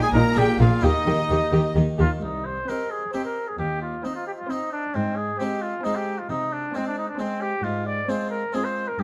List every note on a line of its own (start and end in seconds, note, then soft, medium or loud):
0.00 0.12 A#2 medium
0.00 0.35 D#4 medium
0.00 0.35 G4 medium
0.00 0.08 G#4 medium
0.00 0.14 G#5 medium
0.13 0.21 A#1 medium
0.13 0.35 A#2 medium
0.13 0.22 A#2 medium
0.13 0.22 D#4 medium
0.13 0.39 A#4 medium
0.13 0.36 A#5 loud
0.13 0.37 A#5 medium
0.32 0.44 A#1 medium
0.32 0.78 A#3 medium
0.32 0.80 D4 medium
0.32 0.81 G#4 medium
0.32 0.59 G5 loud
0.37 0.45 A#2 medium
0.37 0.58 A#2 medium
0.37 0.60 G4 medium
0.37 0.45 G#4 medium
0.37 0.45 G5 loud
0.59 0.67 A#1 medium
0.59 0.68 A#2 medium
0.59 0.81 A#2 medium
0.59 0.85 F4 medium
0.59 0.69 G#4 medium
0.59 0.68 F5 medium
0.59 0.83 F5 medium
0.79 0.90 D#2 medium
0.79 2.16 A#3 medium
0.79 2.17 D#4 medium
0.79 2.18 G4 medium
0.79 1.76 D#5 medium
0.83 0.91 D#3 medium
0.83 1.05 D#3 medium
0.83 1.76 D#4 medium
0.83 0.92 G4 medium
0.83 1.74 D#5 loud
1.05 1.13 D#2 medium
1.05 1.14 D#3 medium
1.05 1.28 D#3 medium
1.05 1.15 G4 medium
1.29 1.37 D#2 medium
1.29 1.37 D#3 medium
1.29 1.50 D#3 medium
1.29 1.38 G4 medium
1.52 1.60 D#2 medium
1.52 1.60 D#3 medium
1.52 1.74 D#3 medium
1.52 1.61 G4 medium
1.75 1.83 D#2 medium
1.75 1.84 D#3 medium
1.75 1.97 D#3 medium
1.75 1.83 G4 medium
1.98 2.06 D#2 medium
1.98 2.07 D#3 medium
1.98 2.20 D#3 medium
1.98 2.10 F4 medium
1.98 2.07 G4 medium
2.21 2.57 C2 soft
2.21 2.58 C2 soft
2.21 2.47 D#4 medium
2.46 2.70 C5 medium
2.67 3.01 C4 soft
2.67 3.01 D#4 soft
2.67 3.02 G4 soft
2.67 2.92 A#4 medium
2.67 3.01 C5 soft
2.67 3.01 G5 medium
2.91 3.13 G#4 medium
3.12 3.46 C4 medium
3.12 3.46 C4 soft
3.12 3.46 D#4 soft
3.12 3.24 G4 medium
3.12 3.46 G4 soft
3.12 3.47 C5 medium
3.12 3.47 G5 medium
3.25 3.50 A#4 medium
3.48 3.58 G#4 soft
3.58 3.94 D#2 soft
3.58 3.93 D#2 soft
3.58 3.81 G4 medium
3.82 4.06 F4 medium
4.04 4.38 C4 medium
4.04 4.37 C4 soft
4.04 4.15 D#4 medium
4.04 4.37 D#4 soft
4.04 4.38 C5 soft
4.04 4.38 G5 soft
4.15 4.26 F4 medium
4.27 4.32 G4 medium
4.39 4.52 F4 medium
4.49 4.83 C4 medium
4.49 4.82 C4 soft
4.49 4.72 D#4 medium
4.49 4.83 D#4 soft
4.49 4.83 C5 soft
4.49 4.83 G5 medium
4.73 4.96 D4 medium
4.94 5.29 G#2 soft
4.94 5.30 G#2 medium
4.94 5.18 C4 medium
5.16 5.40 G#4 medium
5.38 5.72 G#3 soft
5.38 5.73 C4 medium
5.38 5.73 C4 soft
5.38 5.73 D#4 soft
5.38 5.64 G4 medium
5.38 5.73 C5 soft
5.38 5.72 G#5 medium
5.62 5.85 F4 medium
5.83 6.17 G#3 soft
5.83 6.18 C4 medium
5.83 6.17 C4 soft
5.83 5.97 D#4 medium
5.83 6.17 D#4 soft
5.83 6.17 C5 soft
5.83 6.18 G#5 medium
5.96 6.20 G4 medium
6.19 6.30 F4 soft
6.29 6.65 C3 medium
6.29 6.64 C3 soft
6.29 6.54 D#4 medium
6.52 6.77 D4 medium
6.73 7.07 G#3 soft
6.73 7.07 C4 medium
6.73 7.07 C4 soft
6.73 6.86 C4 medium
6.73 7.07 C5 medium
6.73 7.07 G#5 medium
6.87 6.97 D4 medium
6.98 7.08 D#4 medium
7.09 7.19 D4 medium
7.17 7.51 G#3 soft
7.17 7.52 C4 medium
7.17 7.51 C4 soft
7.17 7.43 C4 medium
7.17 7.51 C5 medium
7.17 7.52 G#5 medium
7.41 7.65 G4 medium
7.64 7.99 G#2 medium
7.64 7.98 G#2 soft
7.64 7.86 F4 medium
7.87 8.11 D5 medium
8.08 8.41 G#3 soft
8.08 8.42 C4 medium
8.08 8.41 C4 soft
8.08 8.42 F4 soft
8.08 8.41 C5 medium
8.08 8.30 C5 medium
8.08 8.42 G#5 medium
8.31 8.56 A#4 medium
8.53 8.85 G#3 soft
8.53 8.87 C4 medium
8.53 8.86 C4 soft
8.53 8.86 F4 soft
8.53 8.66 G#4 medium
8.53 8.86 C5 medium
8.53 8.87 G#5 medium
8.64 8.89 C5 medium
8.88 9.01 A#4 medium
8.98 9.03 G2 medium
8.98 9.03 G2 soft
8.98 9.03 G4 medium